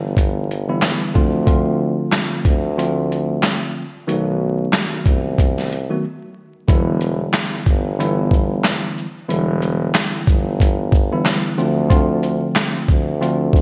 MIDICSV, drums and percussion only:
0, 0, Header, 1, 2, 480
1, 0, Start_track
1, 0, Tempo, 652174
1, 1080, Time_signature, 4, 2, 24, 8
1, 10021, End_track
2, 0, Start_track
2, 0, Title_t, "Drums"
2, 123, Note_on_c, 9, 36, 86
2, 132, Note_on_c, 9, 42, 99
2, 197, Note_off_c, 9, 36, 0
2, 205, Note_off_c, 9, 42, 0
2, 376, Note_on_c, 9, 42, 55
2, 449, Note_off_c, 9, 42, 0
2, 603, Note_on_c, 9, 39, 94
2, 605, Note_on_c, 9, 38, 115
2, 615, Note_on_c, 9, 42, 75
2, 677, Note_off_c, 9, 39, 0
2, 678, Note_off_c, 9, 38, 0
2, 688, Note_off_c, 9, 42, 0
2, 849, Note_on_c, 9, 36, 87
2, 923, Note_off_c, 9, 36, 0
2, 1082, Note_on_c, 9, 36, 110
2, 1088, Note_on_c, 9, 42, 79
2, 1156, Note_off_c, 9, 36, 0
2, 1162, Note_off_c, 9, 42, 0
2, 1561, Note_on_c, 9, 39, 99
2, 1563, Note_on_c, 9, 38, 120
2, 1580, Note_on_c, 9, 42, 66
2, 1635, Note_off_c, 9, 39, 0
2, 1636, Note_off_c, 9, 38, 0
2, 1653, Note_off_c, 9, 42, 0
2, 1803, Note_on_c, 9, 36, 91
2, 1809, Note_on_c, 9, 42, 52
2, 1877, Note_off_c, 9, 36, 0
2, 1883, Note_off_c, 9, 42, 0
2, 2054, Note_on_c, 9, 42, 100
2, 2128, Note_off_c, 9, 42, 0
2, 2296, Note_on_c, 9, 42, 54
2, 2370, Note_off_c, 9, 42, 0
2, 2524, Note_on_c, 9, 39, 94
2, 2525, Note_on_c, 9, 38, 115
2, 2535, Note_on_c, 9, 42, 76
2, 2597, Note_off_c, 9, 39, 0
2, 2599, Note_off_c, 9, 38, 0
2, 2609, Note_off_c, 9, 42, 0
2, 3008, Note_on_c, 9, 42, 82
2, 3082, Note_off_c, 9, 42, 0
2, 3480, Note_on_c, 9, 39, 96
2, 3482, Note_on_c, 9, 38, 118
2, 3499, Note_on_c, 9, 42, 65
2, 3554, Note_off_c, 9, 39, 0
2, 3556, Note_off_c, 9, 38, 0
2, 3573, Note_off_c, 9, 42, 0
2, 3722, Note_on_c, 9, 36, 87
2, 3728, Note_on_c, 9, 42, 51
2, 3795, Note_off_c, 9, 36, 0
2, 3801, Note_off_c, 9, 42, 0
2, 3963, Note_on_c, 9, 36, 88
2, 3971, Note_on_c, 9, 42, 101
2, 4036, Note_off_c, 9, 36, 0
2, 4045, Note_off_c, 9, 42, 0
2, 4107, Note_on_c, 9, 38, 33
2, 4181, Note_off_c, 9, 38, 0
2, 4214, Note_on_c, 9, 42, 54
2, 4287, Note_off_c, 9, 42, 0
2, 4920, Note_on_c, 9, 36, 113
2, 4927, Note_on_c, 9, 42, 86
2, 4994, Note_off_c, 9, 36, 0
2, 5000, Note_off_c, 9, 42, 0
2, 5158, Note_on_c, 9, 42, 53
2, 5158, Note_on_c, 9, 82, 55
2, 5232, Note_off_c, 9, 42, 0
2, 5232, Note_off_c, 9, 82, 0
2, 5398, Note_on_c, 9, 39, 99
2, 5399, Note_on_c, 9, 38, 125
2, 5417, Note_on_c, 9, 42, 68
2, 5472, Note_off_c, 9, 39, 0
2, 5473, Note_off_c, 9, 38, 0
2, 5490, Note_off_c, 9, 42, 0
2, 5640, Note_on_c, 9, 36, 93
2, 5645, Note_on_c, 9, 82, 55
2, 5714, Note_off_c, 9, 36, 0
2, 5719, Note_off_c, 9, 82, 0
2, 5891, Note_on_c, 9, 42, 100
2, 5964, Note_off_c, 9, 42, 0
2, 6117, Note_on_c, 9, 36, 91
2, 6133, Note_on_c, 9, 82, 56
2, 6191, Note_off_c, 9, 36, 0
2, 6206, Note_off_c, 9, 82, 0
2, 6360, Note_on_c, 9, 39, 99
2, 6362, Note_on_c, 9, 38, 119
2, 6372, Note_on_c, 9, 42, 78
2, 6434, Note_off_c, 9, 39, 0
2, 6435, Note_off_c, 9, 38, 0
2, 6445, Note_off_c, 9, 42, 0
2, 6608, Note_on_c, 9, 82, 48
2, 6681, Note_off_c, 9, 82, 0
2, 6847, Note_on_c, 9, 42, 82
2, 6921, Note_off_c, 9, 42, 0
2, 7081, Note_on_c, 9, 42, 54
2, 7081, Note_on_c, 9, 82, 52
2, 7154, Note_off_c, 9, 42, 0
2, 7154, Note_off_c, 9, 82, 0
2, 7320, Note_on_c, 9, 39, 98
2, 7321, Note_on_c, 9, 38, 123
2, 7338, Note_on_c, 9, 42, 66
2, 7393, Note_off_c, 9, 39, 0
2, 7395, Note_off_c, 9, 38, 0
2, 7412, Note_off_c, 9, 42, 0
2, 7561, Note_on_c, 9, 36, 95
2, 7567, Note_on_c, 9, 82, 54
2, 7635, Note_off_c, 9, 36, 0
2, 7640, Note_off_c, 9, 82, 0
2, 7803, Note_on_c, 9, 36, 87
2, 7812, Note_on_c, 9, 42, 100
2, 7876, Note_off_c, 9, 36, 0
2, 7886, Note_off_c, 9, 42, 0
2, 8039, Note_on_c, 9, 36, 91
2, 8055, Note_on_c, 9, 82, 57
2, 8112, Note_off_c, 9, 36, 0
2, 8128, Note_off_c, 9, 82, 0
2, 8283, Note_on_c, 9, 39, 98
2, 8285, Note_on_c, 9, 38, 122
2, 8295, Note_on_c, 9, 42, 80
2, 8357, Note_off_c, 9, 39, 0
2, 8358, Note_off_c, 9, 38, 0
2, 8368, Note_off_c, 9, 42, 0
2, 8530, Note_on_c, 9, 82, 48
2, 8603, Note_off_c, 9, 82, 0
2, 8762, Note_on_c, 9, 36, 113
2, 8769, Note_on_c, 9, 42, 85
2, 8835, Note_off_c, 9, 36, 0
2, 8842, Note_off_c, 9, 42, 0
2, 9002, Note_on_c, 9, 42, 52
2, 9002, Note_on_c, 9, 82, 52
2, 9075, Note_off_c, 9, 42, 0
2, 9075, Note_off_c, 9, 82, 0
2, 9241, Note_on_c, 9, 39, 96
2, 9243, Note_on_c, 9, 38, 119
2, 9260, Note_on_c, 9, 42, 66
2, 9315, Note_off_c, 9, 39, 0
2, 9316, Note_off_c, 9, 38, 0
2, 9333, Note_off_c, 9, 42, 0
2, 9483, Note_on_c, 9, 36, 94
2, 9489, Note_on_c, 9, 82, 55
2, 9556, Note_off_c, 9, 36, 0
2, 9563, Note_off_c, 9, 82, 0
2, 9734, Note_on_c, 9, 42, 105
2, 9807, Note_off_c, 9, 42, 0
2, 9959, Note_on_c, 9, 36, 91
2, 9976, Note_on_c, 9, 82, 56
2, 10021, Note_off_c, 9, 36, 0
2, 10021, Note_off_c, 9, 82, 0
2, 10021, End_track
0, 0, End_of_file